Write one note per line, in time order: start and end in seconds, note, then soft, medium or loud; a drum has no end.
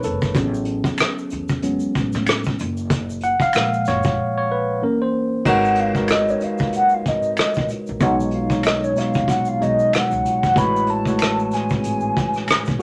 0.00 0.36 G#4 medium
0.00 0.37 A#4 medium
0.00 0.37 B4 loud
0.00 0.37 C#5 loud
0.00 closed hi-hat medium
0.00 shaker medium
0.04 0.33 F#1 medium
0.04 1.59 A4 medium
0.21 kick medium
0.21 shaker soft
0.35 0.80 A1 loud
0.35 0.79 F#3 medium
0.35 0.79 B3 medium
0.35 0.80 C#4 medium
0.35 0.79 G#4 medium
0.35 kick loud
0.35 closed hi-hat medium
0.35 shaker medium
0.54 shaker soft
0.65 closed hi-hat medium
0.84 kick medium
0.84 closed hi-hat soft
0.84 shaker soft
0.98 finger snap medium
0.98 cross-stick loud
0.98 closed hi-hat medium
0.98 shaker medium
1.18 shaker soft
1.30 1.76 E2 medium
1.30 closed hi-hat medium
1.30 shaker soft
1.48 kick medium
1.48 shaker soft
1.62 1.91 F#3 soft
1.62 1.92 G#3 soft
1.62 1.92 B3 medium
1.62 1.92 C#4 medium
1.62 closed hi-hat medium
1.62 shaker medium
1.80 shaker soft
1.95 2.12 A1 medium
1.95 kick medium
1.95 closed hi-hat medium
1.95 shaker soft
2.13 2.54 A2 loud
2.13 cross-stick soft
2.13 shaker soft
2.27 finger snap medium
2.27 cross-stick loud
2.27 closed hi-hat medium
2.27 shaker medium
2.44 kick medium
2.44 shaker soft
2.59 3.33 F#1 loud
2.59 closed hi-hat medium
2.59 shaker medium
2.77 shaker soft
2.90 kick loud
2.90 closed hi-hat medium
2.90 shaker medium
3.10 shaker soft
3.21 3.41 F#5 loud
3.21 closed hi-hat medium
3.21 shaker soft
3.40 3.88 F5 loud
3.40 kick medium
3.40 closed hi-hat soft
3.40 shaker soft
3.53 4.79 A#2 medium
3.53 4.78 F3 medium
3.53 4.78 G#3 soft
3.53 finger snap medium
3.53 cross-stick loud
3.53 closed hi-hat medium
3.53 shaker medium
3.73 shaker soft
3.85 4.16 F#1 loud
3.85 4.36 C#5 loud
3.85 cross-stick soft
3.85 closed hi-hat medium
3.85 shaker soft
4.03 kick medium
4.03 shaker soft
4.38 4.51 C#5 medium
4.52 4.80 B4 medium
4.82 5.42 E3 medium
4.82 5.43 A#3 soft
4.82 5.43 C#4 medium
4.82 4.99 A#4 medium
5.02 5.43 C5 medium
5.45 6.38 G#1 medium
5.45 5.83 G#3 medium
5.45 5.83 D#4 medium
5.45 5.83 F#4 medium
5.45 5.83 A#4 medium
5.45 5.83 B4 medium
5.45 5.84 C#5 loud
5.45 5.81 F#5 loud
5.45 kick medium
5.45 crash medium
5.45 shaker medium
5.65 shaker soft
5.75 closed hi-hat medium
5.80 6.13 F5 medium
5.95 6.92 G#3 medium
5.95 6.93 D#4 medium
5.95 6.93 F#4 medium
5.95 6.93 A#4 medium
5.95 6.93 B4 medium
5.95 6.93 D#5 medium
5.95 kick medium
5.95 shaker soft
6.08 6.32 D#5 loud
6.08 finger snap medium
6.08 cross-stick loud
6.08 closed hi-hat medium
6.08 shaker medium
6.28 6.45 C#5 medium
6.28 shaker soft
6.40 6.74 F5 medium
6.40 muted upright bass stroke soft
6.40 closed hi-hat medium
6.40 shaker soft
6.58 7.01 F#1 medium
6.58 kick medium
6.58 shaker soft
6.73 6.95 F#5 loud
6.73 closed hi-hat medium
6.73 shaker soft
6.89 shaker soft
6.94 7.09 F5 medium
7.06 7.35 G#1 medium
7.06 7.70 D#5 medium
7.06 kick medium
7.06 closed hi-hat medium
7.06 shaker soft
7.22 shaker soft
7.37 finger snap medium
7.37 muted upright bass stroke soft
7.37 cross-stick loud
7.37 closed hi-hat medium
7.37 shaker medium
7.54 kick medium
7.54 shaker soft
7.58 7.69 A#1 medium
7.69 closed hi-hat medium
7.69 shaker soft
7.87 8.02 A#1 medium
7.87 shaker soft
8.00 8.93 B1 loud
8.00 8.38 B2 loud
8.00 8.38 F#3 medium
8.00 8.38 G#3 medium
8.00 8.38 D#4 medium
8.00 8.39 C#5 loud
8.00 8.16 F#5 medium
8.00 kick loud
8.00 closed hi-hat medium
8.00 shaker medium
8.20 shaker soft
8.31 8.67 F5 medium
8.31 closed hi-hat medium
8.50 8.86 B2 medium
8.50 8.86 F#3 medium
8.50 8.87 G#3 medium
8.50 8.87 D#4 medium
8.50 8.87 C#5 medium
8.50 kick medium
8.50 shaker soft
8.63 8.85 D#5 medium
8.63 finger snap medium
8.63 cross-stick loud
8.63 closed hi-hat medium
8.63 shaker medium
8.84 9.00 C#5 medium
8.84 shaker soft
8.96 9.47 F#3 medium
8.96 9.47 G#3 medium
8.96 9.47 B3 medium
8.96 9.48 D#4 medium
8.96 9.48 C#5 medium
8.96 9.31 F5 medium
8.96 muted upright bass stroke soft
8.96 cross-stick soft
8.96 closed hi-hat medium
8.96 shaker soft
9.14 9.57 A#1 medium
9.14 kick medium
9.14 shaker soft
9.28 9.50 F#5 loud
9.28 kick medium
9.28 closed hi-hat medium
9.28 shaker medium
9.45 9.64 F5 medium
9.45 shaker soft
9.60 9.90 B1 medium
9.60 10.34 B2 medium
9.60 10.35 F#3 medium
9.60 10.35 G#3 medium
9.60 10.35 D#4 medium
9.60 10.35 C#5 medium
9.60 9.95 D#5 medium
9.60 closed hi-hat medium
9.60 shaker soft
9.79 shaker soft
9.93 10.59 F#5 medium
9.93 finger snap medium
9.93 muted upright bass stroke soft
9.93 cross-stick loud
9.93 closed hi-hat medium
9.93 shaker medium
10.11 10.24 C#2 medium
10.11 shaker soft
10.26 closed hi-hat medium
10.26 shaker medium
10.43 10.56 F#1 medium
10.43 kick medium
10.43 shaker soft
10.55 11.48 A1 loud
10.55 10.93 A2 loud
10.55 10.93 E3 medium
10.55 10.93 G#3 medium
10.55 10.94 F#4 medium
10.55 10.94 B4 medium
10.55 10.94 C#5 loud
10.55 10.91 B5 loud
10.55 kick loud
10.55 closed hi-hat medium
10.55 shaker medium
10.76 shaker soft
10.87 11.55 A5 loud
10.87 closed hi-hat medium
11.05 12.03 E3 medium
11.05 12.04 G#3 medium
11.05 12.03 A3 medium
11.05 12.04 F#4 medium
11.05 12.04 B4 medium
11.05 12.04 C#5 medium
11.05 kick medium
11.05 closed hi-hat soft
11.05 shaker soft
11.19 finger snap medium
11.19 cross-stick loud
11.19 closed hi-hat medium
11.19 shaker medium
11.39 shaker soft
11.51 12.80 G#5 medium
11.51 muted upright bass stroke soft
11.51 closed hi-hat medium
11.51 shaker soft
11.55 cross-stick soft
11.69 12.12 G#1 medium
11.69 kick medium
11.69 shaker soft
11.84 closed hi-hat medium
11.84 shaker medium
12.00 shaker soft
12.17 12.45 A1 medium
12.17 kick medium
12.17 cross-stick soft
12.17 closed hi-hat medium
12.17 shaker soft
12.34 cross-stick soft
12.34 shaker soft
12.48 finger snap medium
12.48 muted upright bass stroke soft
12.48 cross-stick loud
12.48 closed hi-hat medium
12.48 shaker medium
12.65 12.80 B1 medium
12.65 kick medium
12.65 closed hi-hat soft
12.65 shaker soft
12.79 12.82 F#3 medium